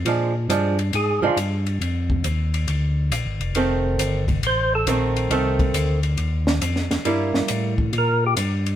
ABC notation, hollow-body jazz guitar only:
X:1
M:4/4
L:1/8
Q:"Swing" 1/4=137
K:Fmix
V:1 name="Hollow-body jazz guitar"
[F,_A,D] z [F,A,D] z2 [F,A,D] z2 | z8 | [E,A,C]3 z3 [E,A,C]2 | [E,A,C]3 z4 z |
[G,B,=E]3 z4 z |]